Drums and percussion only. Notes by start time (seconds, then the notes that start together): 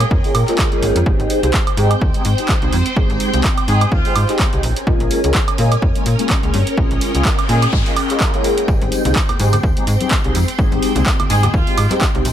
0.00 closed hi-hat, high woodblock
0.11 kick
0.24 open hi-hat
0.35 open hi-hat, high woodblock
0.48 clap, closed hi-hat
0.58 kick, clap
0.72 closed hi-hat
0.83 open hi-hat
0.96 closed hi-hat
1.06 kick
1.20 closed hi-hat
1.30 open hi-hat
1.43 closed hi-hat
1.54 kick, clap
1.67 closed hi-hat, high woodblock
1.77 open hi-hat
1.91 closed hi-hat, high woodblock
2.01 kick
2.14 closed hi-hat
2.25 open hi-hat
2.38 closed hi-hat
2.49 kick, clap
2.62 closed hi-hat
2.73 open hi-hat
2.86 closed hi-hat
2.96 kick
3.10 closed hi-hat
3.20 open hi-hat
3.34 closed hi-hat
3.44 kick, clap
3.58 closed hi-hat, high woodblock
3.68 open hi-hat
3.81 closed hi-hat, high woodblock
3.92 kick
4.05 open hi-hat
4.16 open hi-hat, high woodblock
4.29 clap, closed hi-hat
4.39 kick, clap
4.53 closed hi-hat
4.63 open hi-hat
4.76 closed hi-hat
4.87 kick
5.00 closed hi-hat
5.11 open hi-hat
5.24 closed hi-hat
5.34 kick, clap
5.48 closed hi-hat, high woodblock
5.58 open hi-hat
5.72 closed hi-hat, high woodblock
5.82 kick
5.95 closed hi-hat
6.06 open hi-hat
6.19 closed hi-hat
6.30 kick, clap
6.43 closed hi-hat
6.54 open hi-hat
6.67 closed hi-hat
6.77 kick
6.91 closed hi-hat
7.01 open hi-hat
7.15 closed hi-hat
7.25 kick, clap
7.39 closed hi-hat, high woodblock
7.49 open hi-hat
7.62 closed hi-hat, high woodblock
7.73 kick
7.86 open hi-hat
7.96 open hi-hat, high woodblock
8.10 clap, closed hi-hat
8.20 kick, clap
8.34 closed hi-hat
8.44 open hi-hat
8.58 closed hi-hat
8.68 kick, tambourine
8.82 closed hi-hat, high conga
8.92 open hi-hat, tambourine
9.05 closed hi-hat, tambourine, low conga
9.15 kick, clap
9.29 closed hi-hat, low conga, high woodblock
9.40 open hi-hat, tambourine, high conga
9.53 closed hi-hat, tambourine, low conga, high woodblock
9.63 kick, tambourine
9.77 closed hi-hat
9.87 open hi-hat, tambourine
10.01 closed hi-hat, tambourine, high conga
10.11 kick, clap, tambourine
10.24 closed hi-hat
10.35 open hi-hat, tambourine
10.48 closed hi-hat, tambourine
10.59 kick, tambourine
10.72 closed hi-hat, high conga
10.82 open hi-hat, tambourine
10.95 closed hi-hat, tambourine, low conga
11.06 kick, clap, tambourine
11.20 closed hi-hat, low conga, high woodblock
11.30 open hi-hat, tambourine, high conga
11.43 closed hi-hat, tambourine, low conga, high woodblock
11.54 kick, tambourine
11.67 open hi-hat
11.78 open hi-hat, tambourine, high woodblock
11.90 clap, closed hi-hat, tambourine, high conga
12.01 kick, clap, tambourine
12.15 closed hi-hat
12.25 open hi-hat, tambourine